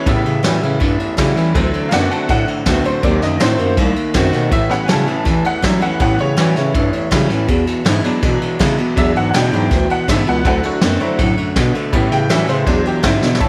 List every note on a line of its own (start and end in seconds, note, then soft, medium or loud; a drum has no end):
0.06 0.23 A2 medium
0.06 0.40 A2 medium
0.06 0.77 A2 loud
0.06 0.31 C#3 medium
0.06 0.40 E3 loud
0.06 0.31 G3 medium
0.06 0.32 B3 medium
0.06 1.16 E5 medium
0.06 kick loud
0.06 ride medium
0.25 0.41 C#3 medium
0.25 ride medium
0.43 0.60 A2 medium
0.43 0.61 E3 medium
0.43 0.60 E3 loud
0.43 0.60 F#3 medium
0.43 0.62 G3 medium
0.43 0.62 C#4 medium
0.43 0.60 E4 medium
0.43 snare loud
0.43 ride medium
0.61 0.79 A2 medium
0.61 0.78 C#3 medium
0.61 0.79 E3 medium
0.61 0.81 C#4 medium
0.61 0.80 E4 medium
0.61 ride medium
0.80 1.51 E2 medium
0.80 0.97 G2 medium
0.80 1.14 A2 medium
0.80 1.14 E3 loud
0.80 kick loud
0.80 ride medium
0.99 1.07 G2 medium
0.99 ride medium
1.17 1.35 A2 medium
1.17 1.34 C#3 medium
1.17 1.53 E3 medium
1.17 1.35 F#3 medium
1.17 1.53 G3 loud
1.17 1.53 C#4 medium
1.17 1.54 E4 loud
1.17 kick medium
1.17 snare loud
1.17 ride medium
1.36 1.53 A2 medium
1.36 1.53 E3 medium
1.36 snare soft
1.36 ride medium
1.54 1.71 D2 medium
1.54 1.88 D3 medium
1.54 1.90 D3 medium
1.54 2.99 E3 medium
1.54 3.00 F#3 medium
1.54 1.88 A3 loud
1.54 3.00 C4 medium
1.54 kick loud
1.54 ride medium
1.73 1.81 D2 medium
1.73 ride medium
1.89 2.09 F#2 loud
1.89 2.27 D3 medium
1.89 2.09 D3 medium
1.89 2.27 A3 medium
1.89 2.09 B3 loud
1.89 2.28 C4 medium
1.89 2.28 F#4 loud
1.89 2.10 D5 medium
1.89 1.91 F5 medium
1.89 snare loud
1.89 ride medium
1.93 2.10 F#5 loud
2.10 2.27 D3 medium
2.10 2.27 A3 medium
2.10 2.28 F#5 medium
2.10 2.30 A5 medium
2.10 snare soft
2.10 ride medium
2.29 3.00 A2 medium
2.29 2.46 A2 medium
2.29 2.62 D3 loud
2.29 2.63 A3 loud
2.29 2.48 F#5 loud
2.29 kick loud
2.29 snare soft
2.29 ride medium
2.47 2.55 A2 medium
2.47 ride medium
2.66 2.83 D2 loud
2.66 2.83 D3 medium
2.66 2.84 D3 loud
2.66 2.84 A3 medium
2.66 2.83 B3 loud
2.66 2.85 C4 loud
2.66 2.83 F#4 loud
2.66 kick medium
2.66 snare loud
2.66 ride medium
2.84 2.92 D2 medium
2.84 3.02 D3 medium
2.84 3.02 A3 medium
2.84 3.04 C4 soft
2.84 3.03 F#4 medium
2.84 3.04 C5 medium
2.84 ride medium
3.02 3.20 D#2 loud
3.02 3.37 D#3 medium
3.02 3.39 D#3 loud
3.02 3.56 F#3 medium
3.02 3.37 A#3 medium
3.02 3.56 C4 medium
3.02 3.22 D5 medium
3.02 kick loud
3.02 ride medium
3.21 3.38 F#2 medium
3.21 3.41 D#5 medium
3.21 snare soft
3.21 ride medium
3.40 3.57 A2 loud
3.40 3.58 D#3 medium
3.40 3.57 D#3 medium
3.40 3.58 A3 medium
3.40 3.57 C4 medium
3.40 3.59 C4 loud
3.40 3.57 F#4 loud
3.40 3.77 C5 loud
3.40 snare loud
3.40 ride medium
3.59 3.75 F#2 medium
3.59 3.76 D#3 medium
3.59 3.76 A#3 medium
3.59 3.78 C4 medium
3.59 3.77 F#4 medium
3.59 ride medium
3.77 3.94 C2 loud
3.77 4.11 D#3 medium
3.77 4.13 A3 medium
3.77 4.11 A#3 loud
3.77 kick loud
3.77 ride medium
3.96 4.04 C2 medium
3.96 ride medium
4.14 4.31 F#2 loud
4.14 4.31 D#3 medium
4.14 4.50 D#3 medium
4.14 4.50 A3 loud
4.14 4.31 C4 loud
4.14 4.51 C4 loud
4.14 4.51 F#4 loud
4.14 kick medium
4.14 snare loud
4.14 ride medium
4.32 4.50 B2 medium
4.32 4.50 D#3 medium
4.32 4.50 A#3 medium
4.32 snare soft
4.32 ride medium
4.51 4.85 A2 medium
4.51 4.68 A2 loud
4.51 5.22 A2 loud
4.51 4.85 E3 medium
4.51 4.70 E5 loud
4.51 kick loud
4.51 ride medium
4.69 4.78 A2 medium
4.69 5.23 G3 medium
4.69 5.23 B3 medium
4.69 5.23 C#4 medium
4.69 4.89 F#5 medium
4.69 snare soft
4.69 ride medium
4.86 5.05 A2 medium
4.86 5.06 C#3 medium
4.86 5.06 E3 medium
4.86 5.05 F#3 loud
4.86 5.07 G3 medium
4.86 5.07 C#4 medium
4.86 5.06 E4 medium
4.86 4.89 G#5 medium
4.86 snare loud
4.86 ride loud
4.91 5.44 A5 medium
5.06 5.23 A2 medium
5.06 5.16 C#3 medium
5.06 5.24 E3 medium
5.06 5.26 C#4 medium
5.06 5.25 E4 medium
5.06 ride medium
5.25 5.96 E2 medium
5.25 5.59 A2 loud
5.25 5.59 E3 loud
5.25 5.42 E3 medium
5.25 kick loud
5.25 snare soft
5.25 ride medium
5.45 5.53 E3 medium
5.45 5.64 F#5 medium
5.45 ride medium
5.62 5.80 A2 medium
5.62 5.81 E3 medium
5.62 5.80 F#3 medium
5.62 5.79 F#3 medium
5.62 5.81 G3 loud
5.62 5.81 C#4 loud
5.62 5.79 E4 loud
5.62 5.82 E5 medium
5.62 kick medium
5.62 snare loud
5.62 ride medium
5.81 5.98 A2 medium
5.81 5.98 E3 medium
5.81 5.90 F#3 medium
5.81 6.00 C#4 medium
5.81 5.99 E4 medium
5.81 6.00 F#5 medium
5.81 ride medium
6.00 6.71 A2 medium
6.00 6.16 A2 loud
6.00 6.34 A2 medium
6.00 6.34 E3 medium
6.00 6.25 G3 medium
6.00 6.25 B3 medium
6.00 6.25 C#4 medium
6.00 6.19 F#5 loud
6.00 kick loud
6.00 ride medium
6.19 6.36 C#3 medium
6.19 7.28 C#5 loud
6.19 ride medium
6.37 6.54 A2 medium
6.37 6.55 E3 medium
6.37 6.54 E3 loud
6.37 6.54 F#3 loud
6.37 6.55 G3 medium
6.37 6.55 C#4 medium
6.37 6.55 E4 medium
6.37 snare loud
6.37 ride medium
6.55 6.72 A2 medium
6.55 6.73 C#3 medium
6.55 6.73 E3 medium
6.55 6.75 C#4 medium
6.55 6.74 E4 medium
6.55 snare soft
6.55 ride medium
6.74 7.45 E2 medium
6.74 6.91 G2 loud
6.74 7.08 A2 medium
6.74 7.08 E3 loud
6.74 kick loud
6.74 ride medium
6.93 7.00 G2 medium
6.93 ride medium
7.11 7.28 A2 medium
7.11 7.28 C#3 loud
7.11 7.29 E3 medium
7.11 7.28 F#3 loud
7.11 7.29 G3 medium
7.11 7.30 C#4 loud
7.11 7.29 E4 medium
7.11 kick medium
7.11 snare loud
7.11 ride medium
7.29 7.46 A2 medium
7.29 7.47 E3 medium
7.29 7.49 C#4 medium
7.29 7.48 E4 medium
7.29 snare soft
7.29 ride medium
7.47 7.81 E2 medium
7.47 7.65 E2 loud
7.47 8.19 E2 loud
7.47 7.82 B2 loud
7.47 kick loud
7.47 ride medium
7.67 7.75 E2 medium
7.67 snare soft
7.67 ride medium
7.85 8.02 E2 medium
7.85 8.02 G#2 loud
7.85 8.02 C#3 loud
7.85 8.03 D3 medium
7.85 8.03 G#3 medium
7.85 8.04 B3 loud
7.85 8.03 E4 loud
7.85 snare loud
7.85 ride loud
8.03 8.20 E2 medium
8.03 8.11 G#2 medium
8.03 8.21 B2 medium
8.03 8.95 F#3 medium
8.03 8.96 G#3 medium
8.03 8.23 B3 soft
8.03 8.96 D4 medium
8.03 8.22 E4 medium
8.03 snare soft
8.03 ride medium
8.22 8.56 E2 medium
8.22 8.39 B2 loud
8.22 8.93 B2 medium
8.22 8.56 B2 loud
8.22 kick loud
8.22 snare soft
8.22 ride loud
8.40 8.48 B2 medium
8.40 ride medium
8.59 8.76 E2 medium
8.59 8.76 C#3 loud
8.59 8.76 C#3 medium
8.59 8.77 D3 medium
8.59 8.77 G#3 loud
8.59 8.78 B3 loud
8.59 8.77 E4 loud
8.59 kick medium
8.59 snare loud
8.59 ride medium
8.78 8.95 E2 medium
8.78 8.95 B2 medium
8.78 8.97 B3 medium
8.78 8.96 E4 medium
8.78 ride medium
8.96 9.30 E2 medium
8.96 9.13 E2 loud
8.96 9.67 E2 loud
8.96 9.30 B2 medium
8.96 9.49 F#3 medium
8.96 9.50 G#3 medium
8.96 9.50 D4 medium
8.96 9.16 E5 loud
8.96 kick loud
8.96 ride medium
9.15 9.31 G#2 medium
9.15 9.29 F#5 medium
9.15 ride medium
9.31 9.51 E2 medium
9.31 9.50 B2 medium
9.31 9.51 C#3 loud
9.31 9.51 D3 medium
9.31 9.52 G#3 loud
9.31 9.52 B3 medium
9.31 9.33 F#5 medium
9.31 snare loud
9.31 ride medium
9.35 9.51 E4 loud
9.35 9.88 G5 loud
9.52 9.69 E2 medium
9.52 9.69 G#2 loud
9.52 9.69 B2 medium
9.52 9.69 F#3 medium
9.52 9.69 G#3 soft
9.52 9.71 B3 medium
9.52 9.70 D4 medium
9.52 9.70 E4 medium
9.52 ride medium
9.71 9.87 D2 loud
9.71 10.04 E2 medium
9.71 10.41 B2 medium
9.71 10.04 B2 loud
9.71 kick loud
9.71 snare soft
9.71 ride medium
9.89 9.97 D2 medium
9.89 10.08 F#5 medium
9.89 ride medium
10.08 10.24 E2 loud
10.08 10.24 G#2 loud
10.08 10.25 C#3 loud
10.08 10.26 D3 medium
10.08 10.26 G#3 loud
10.08 10.26 B3 loud
10.08 10.26 E4 loud
10.08 10.27 E5 medium
10.08 kick medium
10.08 snare loud
10.08 ride medium
10.25 10.43 C#2 medium
10.25 10.43 E2 medium
10.25 10.43 B2 medium
10.25 10.45 B3 medium
10.25 10.44 E4 medium
10.25 10.46 F#5 medium
10.25 ride medium
10.45 10.61 D2 loud
10.45 10.78 D3 medium
10.45 10.81 D3 loud
10.45 10.70 F#3 medium
10.45 10.79 A3 loud
10.45 10.70 C4 medium
10.45 10.70 E4 medium
10.45 10.64 F#5 medium
10.45 kick loud
10.45 ride medium
10.63 10.71 D2 medium
10.63 11.72 F#4 medium
10.63 ride medium
10.81 10.98 F#2 loud
10.81 10.98 D3 medium
10.81 11.00 D3 medium
10.81 11.00 A3 loud
10.81 10.99 B3 medium
10.81 11.00 C4 medium
10.81 10.99 F#4 medium
10.81 snare loud
10.81 ride medium
11.00 11.08 F#2 medium
11.00 11.17 D3 medium
11.00 11.17 F#3 medium
11.00 11.17 A3 medium
11.00 11.17 C4 soft
11.00 11.19 C4 soft
11.00 11.18 E4 medium
11.00 11.18 F#4 medium
11.00 ride medium
11.18 11.54 F#2 medium
11.18 11.35 A2 medium
11.18 11.52 D3 loud
11.18 11.52 A3 loud
11.18 kick loud
11.18 snare soft
11.18 ride medium
11.37 11.45 A2 medium
11.37 ride medium
11.56 11.72 B2 medium
11.56 11.91 B2 loud
11.56 11.73 D3 medium
11.56 11.73 B3 medium
11.56 kick medium
11.56 snare loud
11.56 ride medium
11.74 11.82 B2 medium
11.74 11.91 D3 medium
11.74 11.91 A3 medium
11.74 ride medium
11.92 12.26 A2 medium
11.92 12.09 A2 loud
11.92 12.63 A2 loud
11.92 12.27 E3 loud
11.92 12.17 G3 medium
11.92 12.17 B3 medium
11.92 12.18 C#4 medium
11.92 kick loud
11.92 ride medium
12.11 12.27 C#3 medium
12.11 12.30 G5 loud
12.11 snare soft
12.11 ride medium
12.29 12.46 A2 medium
12.29 12.47 E3 medium
12.29 12.46 E3 loud
12.29 12.46 F#3 loud
12.29 12.48 G3 medium
12.29 12.48 C#4 medium
12.29 12.46 E4 medium
12.29 12.48 E5 medium
12.29 snare loud
12.29 ride loud
12.48 12.65 A2 medium
12.48 12.65 C#3 medium
12.48 12.65 E3 medium
12.48 12.66 C#4 medium
12.48 12.66 E4 medium
12.48 12.85 C5 medium
12.48 snare soft
12.48 ride medium
12.66 12.83 E2 loud
12.66 13.00 E2 medium
12.66 13.37 E2 medium
12.66 13.00 B2 loud
12.66 13.19 F#3 medium
12.66 13.19 G#3 medium
12.66 13.20 D4 medium
12.66 kick loud
12.66 snare soft
12.66 ride medium
12.84 12.92 E2 medium
12.84 13.04 G4 medium
12.84 ride medium
13.03 13.20 E2 medium
13.03 13.20 G#2 loud
13.03 13.20 C#3 loud
13.03 13.38 D3 loud
13.03 13.39 G#3 loud
13.03 13.39 B3 loud
13.03 13.39 C4 medium
13.03 13.39 E4 loud
13.03 13.41 E4 medium
13.03 kick medium
13.03 snare loud
13.03 ride medium
13.22 13.39 E2 medium
13.22 13.38 B2 medium
13.22 13.39 B2 medium
13.22 snare medium
13.35 snare medium
13.40 13.49 A2 medium
13.40 13.49 E3 medium
13.40 13.49 C#5 medium
13.40 13.49 E5 medium
13.40 13.49 A5 loud
13.40 kick loud
13.40 closed hi-hat medium